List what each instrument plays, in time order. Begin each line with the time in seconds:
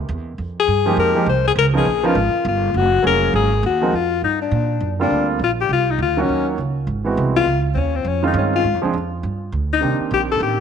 0.09 upright bass E2
0.38 upright bass F2
0.60 alto saxophone G#4
0.68 upright bass G2
0.86 grand piano F3 G#3 A#3 D#4 G4
0.97 upright bass F2, alto saxophone A#4
1.15 grand piano F3 G#3 A#3 D#4 G4
1.26 upright bass C2, alto saxophone C5
1.48 alto saxophone G#4
1.55 upright bass C#2, alto saxophone A#4
1.74 grand piano F3 B3 C#4 D#4 A#4
1.78 alto saxophone G#4
1.85 upright bass A#1
2.03 grand piano F3 B3 C#4 D#4 A#4, alto saxophone F4
2.15 upright bass G#1
2.33 muted upright bass stroke
2.45 upright bass G1, alto saxophone F4
2.74 upright bass F#1, alto saxophone F#4
3.02 upright bass F1, grand piano F#3 A#3 C#4 F4 G#4
3.07 alto saxophone A#4
3.34 upright bass G#1, alto saxophone G#4
3.63 upright bass D#2, alto saxophone F#4
3.81 grand piano F3 G#3 C4 D#4 A#4
3.92 upright bass F2, alto saxophone F4
4.22 upright bass G2, alto saxophone D#4
4.42 alto saxophone D4
4.51 upright bass A#2
4.80 upright bass F#2
4.99 grand piano D3 G3 A#3 C4 F4, alto saxophone D4
5.10 upright bass D2
5.39 upright bass A#1
5.44 alto saxophone F4
5.61 alto saxophone G4
5.69 upright bass C2, alto saxophone F4
5.91 alto saxophone D#4
5.98 upright bass D2, alto saxophone F4
6.17 grand piano D#3 F#3 A#3 C#4 F#4
6.22 alto saxophone C#4
6.29 upright bass D#2
6.58 upright bass C#2
6.87 upright bass G#1
7.04 grand piano E3 G#3 B3 C4 F#4
7.17 upright bass C2
7.36 alto saxophone F4
7.46 upright bass C#2
7.74 upright bass D#2, alto saxophone C4 C#4
7.96 alto saxophone C4
8.05 upright bass F2, alto saxophone C#4
8.23 grand piano D#3 G#3 C4 C#4 F4
8.27 alto saxophone D#4
8.34 upright bass G2
8.38 alto saxophone C#4
8.56 alto saxophone F4
8.64 upright bass G#2
8.74 upright bass F2
8.82 upright bass D2, grand piano F3 G#3 C4 D4 G#4
8.93 upright bass F2
9.23 upright bass G2
9.52 upright bass D2
9.73 alto saxophone D#4
9.81 upright bass C2, grand piano D#3 A#3 C4 D4 G4
10.00 muted upright bass stroke
10.11 upright bass A#1, alto saxophone G4
10.32 alto saxophone A4
10.40 upright bass A1, alto saxophone G4